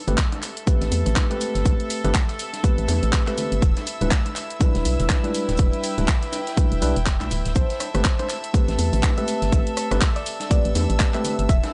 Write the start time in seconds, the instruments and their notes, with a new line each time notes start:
Already playing: string section A4, analog synth pad E6
0.07 fm bass G1, tine electric piano A3 C4 G4 B4, closed hi-hat, high conga, low conga, cabasa
0.13 string section E5
0.18 kick, snare, clap, closed hi-hat, cabasa, shaker
0.32 closed hi-hat, high bongo, cabasa
0.42 clap, open hi-hat, cabasa, shaker
0.57 closed hi-hat, cabasa
0.66 tine electric piano A3 C4 G4 B4, kick, closed hi-hat, high conga, cabasa, shaker
0.81 fm bass A1, snare, closed hi-hat, high bongo, cabasa
0.92 fm bass E2, open hi-hat, cabasa, shaker
1.06 fm bass A1, closed hi-hat, low conga, cabasa
1.16 kick, snare, clap, closed hi-hat, high bongo, cabasa, shaker
1.30 tine electric piano A3 C4 G4 B4, closed hi-hat, high conga, cabasa
1.41 open hi-hat, cabasa, shaker
1.55 fm bass G1, snare, closed hi-hat, cabasa
1.65 fm bass A1, kick, closed hi-hat, high bongo, cabasa, shaker
1.80 closed hi-hat, cabasa
1.90 open hi-hat, cabasa, shaker
2.04 fm bass G1, tine electric piano A3 C4 G4 B4, closed hi-hat, high bongo, high conga, low conga, cabasa
2.14 kick, snare, clap, closed hi-hat, cabasa, shaker
2.29 snare, closed hi-hat, cabasa
2.39 open hi-hat, cabasa, shaker
2.53 snare, closed hi-hat, high bongo, cabasa
2.63 tine electric piano A3 C4 G4 B4, kick, closed hi-hat, high conga, cabasa, shaker
2.78 fm bass A1, closed hi-hat, cabasa
2.88 fm bass E2, open hi-hat, high bongo, cabasa, shaker
3.03 fm bass A1, closed hi-hat, cabasa
3.13 kick, snare, clap, closed hi-hat, cabasa, shaker
3.27 tine electric piano A3 C4 G4 B4, clap, closed hi-hat, high conga, cabasa
3.38 open hi-hat, high bongo, low conga, cabasa, shaker
3.52 fm bass G1, closed hi-hat, cabasa
3.62 fm bass E1, string section E4, kick, closed hi-hat, cabasa, shaker
3.77 snare, closed hi-hat, high bongo, cabasa
3.87 open hi-hat, cabasa, shaker
4.01 fm bass D1, tine electric piano G3 D4 E4 B4, closed hi-hat, high conga, low conga, cabasa
4.07 string section B4, snare, clap
4.11 kick, closed hi-hat, cabasa, shaker
4.25 closed hi-hat, high bongo, cabasa
4.36 clap, open hi-hat, cabasa, shaker
4.50 closed hi-hat, cabasa
4.60 tine electric piano G3 D4 E4 B4, kick, closed hi-hat, high bongo, high conga, cabasa, shaker
4.75 fm bass E1, snare, closed hi-hat, cabasa
4.85 fm bass B1, open hi-hat, cabasa, shaker
4.99 fm bass E1, closed hi-hat, low conga, cabasa
5.09 kick, snare, clap, closed hi-hat, high bongo, cabasa, shaker
5.24 tine electric piano G3 D4 E4 B4, closed hi-hat, high conga, cabasa
5.34 open hi-hat, cabasa, shaker
5.40 string section G5
5.49 fm bass D1, snare, closed hi-hat, high bongo, cabasa
5.57 fm bass E1, kick, closed hi-hat, cabasa, shaker
5.73 closed hi-hat, cabasa
5.83 open hi-hat, cabasa, shaker
5.98 fm bass D1, tine electric piano G3 D4 E4 B4, closed hi-hat, high bongo, high conga, low conga, cabasa
6.08 kick, snare, clap, closed hi-hat, cabasa, shaker
6.22 snare, closed hi-hat, cabasa
6.32 open hi-hat, high bongo, cabasa, shaker
6.47 snare, closed hi-hat, cabasa
6.57 tine electric piano G3 D4 E4 B4, kick, closed hi-hat, high conga, cabasa, shaker
6.72 fm bass E1, closed hi-hat, cabasa
6.82 fm bass B1, tine electric piano G3 D4 E4 B4, open hi-hat, high bongo, cabasa, shaker
6.96 fm bass E1, closed hi-hat, cabasa
7.06 kick, snare, clap, closed hi-hat, cabasa, shaker
7.21 fm bass B1, clap, closed hi-hat, high bongo, high conga, cabasa
7.31 fm bass D1, open hi-hat, low conga, cabasa, shaker
7.45 fm bass D1, snare, closed hi-hat, cabasa
7.55 fm bass A1, string section A4, synth pluck C5, analog synth pad E6, kick, closed hi-hat, cabasa, shaker
7.70 snare, closed hi-hat, cabasa
7.80 cross-stick, open hi-hat, high bongo, cabasa, shaker
7.94 fm bass G1, tine electric piano A3 C4 G4 B4, synth pluck C5, cross-stick, closed hi-hat, high conga, low conga, cabasa
8.05 kick, snare, clap, closed hi-hat, cabasa, shaker
8.19 synth pluck C5, closed hi-hat, high bongo, cabasa
8.29 clap, open hi-hat, cabasa, shaker
8.44 closed hi-hat, cabasa
8.53 tine electric piano A3 C4 G4 B4, kick, closed hi-hat, high conga, cabasa, shaker
8.68 fm bass A1, snare, closed hi-hat, high bongo, cabasa
8.78 fm bass E2, open hi-hat, cabasa, shaker
8.93 fm bass A1, closed hi-hat, low conga, cabasa
9.03 kick, snare, clap, closed hi-hat, high bongo, cabasa, shaker
9.17 tine electric piano A3 C4 G4 B4, synth pluck E5, closed hi-hat, high conga, cabasa
9.28 open hi-hat, cabasa, shaker
9.42 fm bass G1, snare, closed hi-hat, cabasa
9.52 fm bass A1, kick, closed hi-hat, high bongo, cabasa, shaker
9.67 closed hi-hat, cabasa
9.77 cross-stick, open hi-hat, cabasa, shaker
9.91 fm bass G1, tine electric piano A3 C4 G4 B4, cross-stick, closed hi-hat, high bongo, high conga, low conga, cabasa
10.01 kick, snare, clap, closed hi-hat, cabasa, shaker
10.16 synth pluck D5, snare, closed hi-hat, cabasa
10.26 open hi-hat, cabasa, shaker
10.40 snare, closed hi-hat, high bongo, cabasa
10.50 tine electric piano A3 C4 G4 B4, synth pluck D5, kick, closed hi-hat, high conga, cabasa, shaker
10.65 fm bass A1, closed hi-hat, cabasa
10.75 fm bass E2, open hi-hat, high bongo, cabasa, shaker
10.90 fm bass A1, closed hi-hat, cabasa
11.00 kick, snare, clap, closed hi-hat, cabasa, shaker
11.14 tine electric piano A3 C4 G4 B4, synth pluck E5, clap, closed hi-hat, high conga, cabasa
11.24 open hi-hat, high bongo, low conga, cabasa, shaker
11.39 fm bass G1, closed hi-hat, cabasa
11.49 fm bass E1, string section E4, synth pluck E5, kick, closed hi-hat, cabasa, shaker
11.64 string section B4, snare, closed hi-hat, high bongo, cabasa